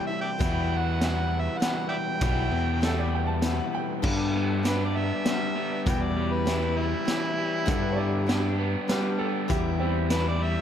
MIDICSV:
0, 0, Header, 1, 8, 480
1, 0, Start_track
1, 0, Tempo, 606061
1, 321, Time_signature, 3, 2, 24, 8
1, 8405, End_track
2, 0, Start_track
2, 0, Title_t, "Harmonica"
2, 0, Program_c, 0, 22
2, 53, Note_on_c, 0, 76, 96
2, 162, Note_off_c, 0, 76, 0
2, 167, Note_on_c, 0, 74, 75
2, 167, Note_on_c, 0, 76, 75
2, 167, Note_on_c, 0, 79, 107
2, 233, Note_off_c, 0, 76, 0
2, 237, Note_off_c, 0, 74, 0
2, 612, Note_on_c, 0, 78, 94
2, 624, Note_off_c, 0, 79, 0
2, 1115, Note_on_c, 0, 76, 97
2, 1127, Note_off_c, 0, 78, 0
2, 1249, Note_on_c, 0, 78, 100
2, 1261, Note_off_c, 0, 76, 0
2, 1490, Note_off_c, 0, 78, 0
2, 1494, Note_on_c, 0, 74, 74
2, 1494, Note_on_c, 0, 76, 74
2, 1494, Note_on_c, 0, 79, 106
2, 1553, Note_off_c, 0, 74, 0
2, 1561, Note_off_c, 0, 76, 0
2, 2678, Note_off_c, 0, 79, 0
2, 3697, Note_on_c, 0, 71, 84
2, 3803, Note_off_c, 0, 71, 0
2, 3836, Note_on_c, 0, 74, 84
2, 3931, Note_on_c, 0, 76, 100
2, 3942, Note_off_c, 0, 74, 0
2, 4627, Note_off_c, 0, 76, 0
2, 4668, Note_on_c, 0, 79, 82
2, 4772, Note_on_c, 0, 74, 88
2, 4784, Note_off_c, 0, 79, 0
2, 5007, Note_on_c, 0, 71, 84
2, 5018, Note_off_c, 0, 74, 0
2, 5363, Note_on_c, 0, 64, 115
2, 5375, Note_off_c, 0, 71, 0
2, 6772, Note_off_c, 0, 64, 0
2, 8007, Note_on_c, 0, 71, 95
2, 8117, Note_off_c, 0, 71, 0
2, 8142, Note_on_c, 0, 74, 96
2, 8257, Note_on_c, 0, 76, 111
2, 8269, Note_off_c, 0, 74, 0
2, 8405, Note_off_c, 0, 76, 0
2, 8405, End_track
3, 0, Start_track
3, 0, Title_t, "Upright piano"
3, 0, Program_c, 1, 0
3, 2254, Note_on_c, 1, 69, 91
3, 2361, Note_off_c, 1, 69, 0
3, 2369, Note_on_c, 1, 74, 76
3, 2478, Note_off_c, 1, 74, 0
3, 2493, Note_on_c, 1, 79, 68
3, 2588, Note_on_c, 1, 81, 78
3, 2601, Note_off_c, 1, 79, 0
3, 2946, Note_off_c, 1, 81, 0
3, 2967, Note_on_c, 1, 79, 84
3, 3199, Note_off_c, 1, 79, 0
3, 6087, Note_on_c, 1, 69, 88
3, 6194, Note_on_c, 1, 71, 72
3, 6198, Note_off_c, 1, 69, 0
3, 6275, Note_on_c, 1, 73, 62
3, 6303, Note_on_c, 1, 74, 86
3, 6308, Note_off_c, 1, 73, 0
3, 6311, Note_off_c, 1, 71, 0
3, 7012, Note_off_c, 1, 74, 0
3, 7043, Note_on_c, 1, 71, 79
3, 7275, Note_on_c, 1, 69, 83
3, 7276, Note_off_c, 1, 71, 0
3, 7512, Note_off_c, 1, 69, 0
3, 7525, Note_on_c, 1, 67, 83
3, 7757, Note_off_c, 1, 67, 0
3, 7758, Note_on_c, 1, 64, 89
3, 7760, Note_on_c, 1, 60, 77
3, 7985, Note_off_c, 1, 60, 0
3, 7993, Note_off_c, 1, 64, 0
3, 8405, End_track
4, 0, Start_track
4, 0, Title_t, "Tonewheel organ"
4, 0, Program_c, 2, 16
4, 2987, Note_on_c, 2, 55, 57
4, 3000, Note_on_c, 2, 57, 59
4, 3023, Note_on_c, 2, 59, 59
4, 3056, Note_on_c, 2, 60, 59
4, 3075, Note_on_c, 2, 62, 60
4, 3090, Note_on_c, 2, 64, 59
4, 3119, Note_on_c, 2, 65, 59
4, 3132, Note_on_c, 2, 67, 57
4, 3153, Note_off_c, 2, 55, 0
4, 3156, Note_on_c, 2, 69, 58
4, 3160, Note_off_c, 2, 57, 0
4, 3172, Note_off_c, 2, 59, 0
4, 3177, Note_on_c, 2, 71, 59
4, 3188, Note_off_c, 2, 60, 0
4, 3197, Note_off_c, 2, 62, 0
4, 3197, Note_on_c, 2, 72, 59
4, 3205, Note_off_c, 2, 64, 0
4, 3217, Note_off_c, 2, 67, 0
4, 3220, Note_off_c, 2, 65, 0
4, 3221, Note_on_c, 2, 59, 67
4, 3225, Note_on_c, 2, 62, 63
4, 3227, Note_on_c, 2, 67, 64
4, 3228, Note_on_c, 2, 55, 63
4, 3238, Note_off_c, 2, 69, 0
4, 3249, Note_off_c, 2, 71, 0
4, 3258, Note_off_c, 2, 72, 0
4, 4626, Note_off_c, 2, 55, 0
4, 4630, Note_off_c, 2, 67, 0
4, 4636, Note_on_c, 2, 55, 65
4, 4639, Note_off_c, 2, 59, 0
4, 4639, Note_on_c, 2, 67, 65
4, 4641, Note_on_c, 2, 64, 68
4, 4642, Note_off_c, 2, 62, 0
4, 4648, Note_on_c, 2, 59, 65
4, 6066, Note_off_c, 2, 55, 0
4, 6068, Note_off_c, 2, 67, 0
4, 6069, Note_off_c, 2, 64, 0
4, 6072, Note_off_c, 2, 59, 0
4, 6082, Note_on_c, 2, 59, 65
4, 6082, Note_on_c, 2, 67, 67
4, 6083, Note_on_c, 2, 62, 66
4, 6094, Note_on_c, 2, 55, 70
4, 7508, Note_off_c, 2, 59, 0
4, 7508, Note_off_c, 2, 67, 0
4, 7509, Note_off_c, 2, 62, 0
4, 7514, Note_off_c, 2, 55, 0
4, 7534, Note_on_c, 2, 55, 64
4, 7535, Note_on_c, 2, 64, 66
4, 7540, Note_on_c, 2, 67, 65
4, 7544, Note_on_c, 2, 71, 67
4, 8405, Note_off_c, 2, 55, 0
4, 8405, Note_off_c, 2, 64, 0
4, 8405, Note_off_c, 2, 67, 0
4, 8405, Note_off_c, 2, 71, 0
4, 8405, End_track
5, 0, Start_track
5, 0, Title_t, "Steel-string acoustic guitar"
5, 0, Program_c, 3, 25
5, 74, Note_on_c, 3, 64, 43
5, 83, Note_on_c, 3, 60, 40
5, 93, Note_on_c, 3, 55, 39
5, 307, Note_on_c, 3, 40, 78
5, 308, Note_off_c, 3, 55, 0
5, 309, Note_off_c, 3, 64, 0
5, 309, Note_on_c, 3, 47, 75
5, 310, Note_on_c, 3, 52, 80
5, 316, Note_off_c, 3, 60, 0
5, 317, Note_on_c, 3, 55, 85
5, 319, Note_on_c, 3, 59, 88
5, 319, Note_on_c, 3, 64, 91
5, 789, Note_off_c, 3, 52, 0
5, 795, Note_off_c, 3, 40, 0
5, 796, Note_off_c, 3, 47, 0
5, 799, Note_on_c, 3, 52, 57
5, 801, Note_off_c, 3, 55, 0
5, 801, Note_off_c, 3, 64, 0
5, 804, Note_off_c, 3, 59, 0
5, 805, Note_on_c, 3, 55, 59
5, 807, Note_on_c, 3, 59, 66
5, 813, Note_on_c, 3, 64, 66
5, 1257, Note_off_c, 3, 52, 0
5, 1267, Note_on_c, 3, 52, 59
5, 1268, Note_off_c, 3, 55, 0
5, 1271, Note_on_c, 3, 55, 64
5, 1276, Note_off_c, 3, 64, 0
5, 1277, Note_off_c, 3, 59, 0
5, 1280, Note_on_c, 3, 59, 64
5, 1286, Note_on_c, 3, 64, 64
5, 1748, Note_off_c, 3, 52, 0
5, 1751, Note_on_c, 3, 40, 73
5, 1756, Note_on_c, 3, 47, 73
5, 1757, Note_off_c, 3, 64, 0
5, 1758, Note_on_c, 3, 52, 85
5, 1760, Note_off_c, 3, 55, 0
5, 1763, Note_on_c, 3, 55, 84
5, 1764, Note_off_c, 3, 59, 0
5, 1766, Note_on_c, 3, 64, 91
5, 1767, Note_on_c, 3, 59, 93
5, 2216, Note_off_c, 3, 52, 0
5, 2224, Note_off_c, 3, 55, 0
5, 2226, Note_on_c, 3, 52, 68
5, 2232, Note_off_c, 3, 59, 0
5, 2233, Note_on_c, 3, 55, 72
5, 2238, Note_off_c, 3, 40, 0
5, 2239, Note_off_c, 3, 64, 0
5, 2240, Note_off_c, 3, 47, 0
5, 2242, Note_on_c, 3, 59, 71
5, 2248, Note_on_c, 3, 64, 74
5, 2696, Note_off_c, 3, 52, 0
5, 2704, Note_off_c, 3, 55, 0
5, 2706, Note_on_c, 3, 52, 64
5, 2707, Note_off_c, 3, 59, 0
5, 2712, Note_off_c, 3, 64, 0
5, 2713, Note_on_c, 3, 55, 73
5, 2716, Note_on_c, 3, 59, 77
5, 2722, Note_on_c, 3, 64, 68
5, 3181, Note_off_c, 3, 55, 0
5, 3181, Note_off_c, 3, 59, 0
5, 3185, Note_on_c, 3, 43, 92
5, 3188, Note_off_c, 3, 52, 0
5, 3190, Note_on_c, 3, 50, 88
5, 3191, Note_on_c, 3, 55, 87
5, 3191, Note_on_c, 3, 59, 93
5, 3193, Note_off_c, 3, 64, 0
5, 3196, Note_on_c, 3, 62, 93
5, 3197, Note_on_c, 3, 67, 94
5, 3664, Note_off_c, 3, 55, 0
5, 3667, Note_on_c, 3, 55, 56
5, 3668, Note_off_c, 3, 62, 0
5, 3673, Note_off_c, 3, 59, 0
5, 3675, Note_off_c, 3, 43, 0
5, 3677, Note_on_c, 3, 59, 60
5, 3678, Note_off_c, 3, 50, 0
5, 3678, Note_on_c, 3, 62, 61
5, 3679, Note_off_c, 3, 67, 0
5, 3682, Note_on_c, 3, 67, 68
5, 4153, Note_off_c, 3, 55, 0
5, 4156, Note_on_c, 3, 55, 58
5, 4162, Note_off_c, 3, 62, 0
5, 4163, Note_off_c, 3, 59, 0
5, 4166, Note_on_c, 3, 59, 66
5, 4172, Note_on_c, 3, 62, 65
5, 4174, Note_off_c, 3, 67, 0
5, 4177, Note_on_c, 3, 67, 66
5, 4641, Note_on_c, 3, 40, 81
5, 4641, Note_on_c, 3, 47, 80
5, 4645, Note_off_c, 3, 55, 0
5, 4646, Note_off_c, 3, 59, 0
5, 4647, Note_off_c, 3, 62, 0
5, 4648, Note_on_c, 3, 52, 80
5, 4650, Note_on_c, 3, 55, 90
5, 4650, Note_on_c, 3, 64, 85
5, 4653, Note_off_c, 3, 67, 0
5, 4657, Note_on_c, 3, 67, 82
5, 5103, Note_off_c, 3, 52, 0
5, 5112, Note_on_c, 3, 52, 65
5, 5113, Note_off_c, 3, 55, 0
5, 5116, Note_off_c, 3, 64, 0
5, 5116, Note_on_c, 3, 55, 59
5, 5123, Note_off_c, 3, 40, 0
5, 5123, Note_off_c, 3, 47, 0
5, 5125, Note_off_c, 3, 67, 0
5, 5125, Note_on_c, 3, 64, 63
5, 5128, Note_on_c, 3, 67, 65
5, 5576, Note_off_c, 3, 52, 0
5, 5586, Note_on_c, 3, 52, 63
5, 5591, Note_off_c, 3, 64, 0
5, 5595, Note_off_c, 3, 55, 0
5, 5598, Note_on_c, 3, 55, 63
5, 5600, Note_on_c, 3, 64, 68
5, 5608, Note_off_c, 3, 67, 0
5, 5611, Note_on_c, 3, 67, 68
5, 6063, Note_on_c, 3, 50, 92
5, 6064, Note_off_c, 3, 52, 0
5, 6065, Note_on_c, 3, 43, 94
5, 6067, Note_off_c, 3, 55, 0
5, 6067, Note_on_c, 3, 55, 94
5, 6069, Note_off_c, 3, 64, 0
5, 6073, Note_on_c, 3, 59, 94
5, 6073, Note_on_c, 3, 62, 95
5, 6075, Note_off_c, 3, 67, 0
5, 6078, Note_on_c, 3, 67, 96
5, 6542, Note_off_c, 3, 55, 0
5, 6545, Note_on_c, 3, 55, 67
5, 6550, Note_off_c, 3, 59, 0
5, 6552, Note_off_c, 3, 62, 0
5, 6553, Note_on_c, 3, 59, 67
5, 6554, Note_off_c, 3, 50, 0
5, 6555, Note_off_c, 3, 43, 0
5, 6561, Note_on_c, 3, 62, 76
5, 6565, Note_off_c, 3, 67, 0
5, 6568, Note_on_c, 3, 67, 79
5, 7028, Note_off_c, 3, 55, 0
5, 7031, Note_on_c, 3, 55, 65
5, 7032, Note_off_c, 3, 62, 0
5, 7035, Note_off_c, 3, 59, 0
5, 7038, Note_on_c, 3, 59, 68
5, 7041, Note_on_c, 3, 62, 66
5, 7048, Note_off_c, 3, 67, 0
5, 7052, Note_on_c, 3, 67, 79
5, 7508, Note_on_c, 3, 40, 84
5, 7510, Note_off_c, 3, 55, 0
5, 7514, Note_on_c, 3, 52, 101
5, 7520, Note_off_c, 3, 59, 0
5, 7520, Note_off_c, 3, 67, 0
5, 7522, Note_off_c, 3, 62, 0
5, 7523, Note_on_c, 3, 55, 94
5, 7523, Note_on_c, 3, 67, 103
5, 7525, Note_on_c, 3, 64, 103
5, 7991, Note_off_c, 3, 52, 0
5, 7995, Note_off_c, 3, 40, 0
5, 8001, Note_on_c, 3, 52, 62
5, 8004, Note_off_c, 3, 55, 0
5, 8004, Note_off_c, 3, 64, 0
5, 8007, Note_on_c, 3, 55, 65
5, 8015, Note_off_c, 3, 67, 0
5, 8015, Note_on_c, 3, 64, 62
5, 8018, Note_on_c, 3, 67, 60
5, 8405, Note_off_c, 3, 52, 0
5, 8405, Note_off_c, 3, 55, 0
5, 8405, Note_off_c, 3, 64, 0
5, 8405, Note_off_c, 3, 67, 0
5, 8405, End_track
6, 0, Start_track
6, 0, Title_t, "Overdriven electric guitar"
6, 0, Program_c, 4, 29
6, 0, Note_on_c, 4, 48, 77
6, 0, Note_on_c, 4, 52, 91
6, 0, Note_on_c, 4, 55, 88
6, 0, Note_on_c, 4, 60, 92
6, 0, Note_on_c, 4, 64, 98
6, 305, Note_off_c, 4, 48, 0
6, 317, Note_off_c, 4, 60, 0
6, 329, Note_off_c, 4, 52, 0
6, 337, Note_off_c, 4, 55, 0
6, 349, Note_off_c, 4, 64, 0
6, 352, Note_on_c, 4, 64, 96
6, 1764, Note_off_c, 4, 64, 0
6, 3450, Note_on_c, 4, 59, 62
6, 3919, Note_off_c, 4, 59, 0
6, 3922, Note_on_c, 4, 59, 64
6, 4396, Note_off_c, 4, 59, 0
6, 4399, Note_on_c, 4, 59, 66
6, 4883, Note_off_c, 4, 59, 0
6, 4886, Note_on_c, 4, 55, 64
6, 5356, Note_off_c, 4, 55, 0
6, 5359, Note_on_c, 4, 55, 62
6, 5619, Note_on_c, 4, 52, 67
6, 5840, Note_off_c, 4, 55, 0
6, 5843, Note_on_c, 4, 55, 63
6, 6092, Note_off_c, 4, 52, 0
6, 6319, Note_off_c, 4, 55, 0
6, 6322, Note_on_c, 4, 59, 69
6, 6792, Note_off_c, 4, 59, 0
6, 6796, Note_on_c, 4, 59, 66
6, 7270, Note_off_c, 4, 59, 0
6, 7273, Note_on_c, 4, 59, 64
6, 7760, Note_off_c, 4, 59, 0
6, 7763, Note_on_c, 4, 55, 61
6, 8234, Note_off_c, 4, 55, 0
6, 8237, Note_on_c, 4, 55, 69
6, 8405, Note_off_c, 4, 55, 0
6, 8405, End_track
7, 0, Start_track
7, 0, Title_t, "Picked electric bass"
7, 0, Program_c, 5, 34
7, 319, Note_on_c, 5, 40, 93
7, 1168, Note_off_c, 5, 40, 0
7, 1753, Note_on_c, 5, 35, 93
7, 1969, Note_off_c, 5, 35, 0
7, 1993, Note_on_c, 5, 40, 95
7, 2845, Note_off_c, 5, 40, 0
7, 3196, Note_on_c, 5, 43, 93
7, 4047, Note_off_c, 5, 43, 0
7, 4644, Note_on_c, 5, 40, 92
7, 5491, Note_off_c, 5, 40, 0
7, 6082, Note_on_c, 5, 43, 95
7, 6929, Note_off_c, 5, 43, 0
7, 7523, Note_on_c, 5, 40, 89
7, 8369, Note_off_c, 5, 40, 0
7, 8405, End_track
8, 0, Start_track
8, 0, Title_t, "Drums"
8, 322, Note_on_c, 9, 36, 107
8, 322, Note_on_c, 9, 42, 61
8, 401, Note_off_c, 9, 36, 0
8, 401, Note_off_c, 9, 42, 0
8, 802, Note_on_c, 9, 38, 84
8, 802, Note_on_c, 9, 42, 63
8, 881, Note_off_c, 9, 38, 0
8, 881, Note_off_c, 9, 42, 0
8, 1282, Note_on_c, 9, 38, 84
8, 1282, Note_on_c, 9, 42, 68
8, 1361, Note_off_c, 9, 38, 0
8, 1361, Note_off_c, 9, 42, 0
8, 1750, Note_on_c, 9, 42, 64
8, 1757, Note_on_c, 9, 36, 111
8, 1829, Note_off_c, 9, 42, 0
8, 1836, Note_off_c, 9, 36, 0
8, 2240, Note_on_c, 9, 38, 88
8, 2240, Note_on_c, 9, 42, 70
8, 2319, Note_off_c, 9, 38, 0
8, 2319, Note_off_c, 9, 42, 0
8, 2710, Note_on_c, 9, 38, 88
8, 2710, Note_on_c, 9, 42, 67
8, 2789, Note_off_c, 9, 38, 0
8, 2789, Note_off_c, 9, 42, 0
8, 3196, Note_on_c, 9, 49, 108
8, 3198, Note_on_c, 9, 36, 103
8, 3275, Note_off_c, 9, 49, 0
8, 3278, Note_off_c, 9, 36, 0
8, 3683, Note_on_c, 9, 38, 82
8, 3683, Note_on_c, 9, 42, 67
8, 3762, Note_off_c, 9, 38, 0
8, 3762, Note_off_c, 9, 42, 0
8, 4161, Note_on_c, 9, 38, 80
8, 4161, Note_on_c, 9, 42, 64
8, 4241, Note_off_c, 9, 38, 0
8, 4241, Note_off_c, 9, 42, 0
8, 4645, Note_on_c, 9, 42, 72
8, 4646, Note_on_c, 9, 36, 107
8, 4724, Note_off_c, 9, 42, 0
8, 4725, Note_off_c, 9, 36, 0
8, 5122, Note_on_c, 9, 38, 87
8, 5122, Note_on_c, 9, 42, 75
8, 5201, Note_off_c, 9, 38, 0
8, 5201, Note_off_c, 9, 42, 0
8, 5605, Note_on_c, 9, 38, 80
8, 5605, Note_on_c, 9, 42, 74
8, 5684, Note_off_c, 9, 38, 0
8, 5684, Note_off_c, 9, 42, 0
8, 6081, Note_on_c, 9, 42, 78
8, 6083, Note_on_c, 9, 36, 110
8, 6161, Note_off_c, 9, 42, 0
8, 6162, Note_off_c, 9, 36, 0
8, 6566, Note_on_c, 9, 38, 84
8, 6566, Note_on_c, 9, 42, 71
8, 6645, Note_off_c, 9, 38, 0
8, 6645, Note_off_c, 9, 42, 0
8, 7043, Note_on_c, 9, 38, 85
8, 7043, Note_on_c, 9, 42, 67
8, 7122, Note_off_c, 9, 38, 0
8, 7122, Note_off_c, 9, 42, 0
8, 7523, Note_on_c, 9, 36, 112
8, 7524, Note_on_c, 9, 42, 69
8, 7602, Note_off_c, 9, 36, 0
8, 7603, Note_off_c, 9, 42, 0
8, 8000, Note_on_c, 9, 38, 88
8, 8000, Note_on_c, 9, 42, 69
8, 8080, Note_off_c, 9, 38, 0
8, 8080, Note_off_c, 9, 42, 0
8, 8405, End_track
0, 0, End_of_file